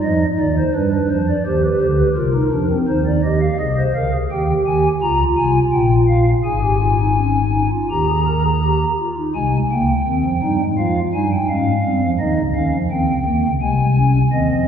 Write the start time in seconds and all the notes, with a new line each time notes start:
Already playing: D#4
0.03 F2 F3 D#5
0.39 D#2 D#3 D5
0.57 C5
0.75 G2 G3 D4 B4
0.93 B4
1.10 F2 F3 C5
1.28 D5
1.46 D#2 D#3 G4 C5
1.63 B4
1.81 D2 D3 C5
1.98 B4
2.16 C2 C3 F4 A#4
2.34 D#4
2.52 F2 F3 D4
2.70 C4
2.88 D#2 D#3 D#4 C5
3.06 D5
3.24 G4 D#5
3.41 F5
3.60 C2 C3 G#4 D#5
3.78 C5
3.95 C#2 C#3 A#4 F5
4.13 G#4
4.31 D#2 D#3 G4 G5
4.66 D#2 D#3 G#5
5.02 C#2 C#3 F4 A#5
5.37 C2 C3 G#5
5.72 A#1 A#2 G5
6.08 F5
6.44 G#1 G#2 G#4 G#5
6.62 G4
6.81 F4
6.99 D#4
7.17 C#4
7.54 D#4
7.72 F4
7.90 D#2 D#3 G4 A#5
8.08 G#4
8.27 A#4
8.45 G#4
8.63 G4
8.99 F4
9.18 D#4
9.35 C2 C3 G#3 G#5
9.71 C#2 C#3 A#3 G5
10.07 D#2 D#3 C4
10.24 F2 F3
10.42 G2 G3 D#4
10.60 G#2 G#3
10.78 F2 F3 F4 F5
11.14 G2 G3 D#4 G#5
11.32 G5
11.49 G#2 G#3 C#4 F5
11.85 G2 G3 C4
12.02 F2 F3
12.20 D#2 D#3 D#4 D#5
12.37 C#2 C#3
12.55 D#2 D#3 C#4 F5
12.73 F2 F3
12.91 D#2 D#3 C4 G5
13.09 C#2 C#3
13.26 D#2 D#3 A#3
13.44 C#2 C#3
13.62 C2 C3 G#3 G#5
13.97 C#4
14.32 D#2 D#3 C4 D#5
14.49 F2 F3